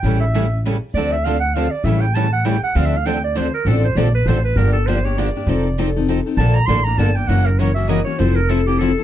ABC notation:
X:1
M:3/4
L:1/8
Q:"Swing" 1/4=199
K:Dm
V:1 name="Clarinet"
g e3 z2 | d e f ^f =f d | e g a ^f g f | (3f e f g d c B |
A c d =B c B | [K:Gm] B A c ^c d2- | d4 z2 | a b c' b a g |
^f ^A ^c =e _e c | c B A G A2 |]
V:2 name="Steel-string acoustic guitar"
[^C,E,A,^CG] z [C,E,A,CG] z [C,E,A,CG] z | [D,F,CDA] z [D,F,CDA] z [D,F,CDA] z | [^C,E,A,^CG] z [C,E,A,CG] z [C,E,A,CG] z | [D,F,CDA] z [D,F,CDA] z [D,F,CDA] z |
[D,F,CDA] z [D,F,CDA] z [D,F,CDA] z | [K:Gm] [D,F,B,DG] z [D,F,B,DG] [B,DG] [D,F,B,DG] [B,DG] | [F,CEA] z [F,CEA] [CEA] [F,CEA] [CEA] | [D,F,B,DA] z [D,F,B,DA] [B,DA] [D,F,B,DA] [B,DA] |
[^C,=E,^A,^C^F] z [C,E,A,CF] [A,CF] [C,E,A,CF] [A,CF] | [F,C=EA] z [F,CEA] [CEA] [F,CEA] [CEA] |]
V:3 name="Steel-string acoustic guitar"
[E,G,^CEA] z [E,G,CEA] z [E,G,CEA] z | [D,F,CDA] z [D,F,CDA] z [D,F,CDA] z | [E,G,^CEA] z [E,G,CEA] z [E,G,CEA] z | [D,F,CDA] z [D,F,CDA] z [D,F,CDA] z |
[D,F,CDA] z [D,F,CDA] z [D,F,CDA] z | [K:Gm] [D,F,B,DG] z [D,F,B,DG] z [D,F,B,DG] z | [F,CEA] z [F,CEA] z [F,CEA] z | [D,F,B,DA] z [D,F,B,DA] z [D,F,B,DA] z |
[^F,^C=E^A] z [F,CEA] z [F,CEA] z | [F,C=EA] z [F,CEA] z [F,CEA] z |]
V:4 name="Upright bass" clef=bass
A,,,6 | D,,6 | A,,,6 | D,,6 |
A,,,2 B,,,2 A,,,2 | [K:Gm] G,,,6 | F,,,6 | B,,,2 A,,,2 G,,,2 |
^F,,,6 | F,,,6 |]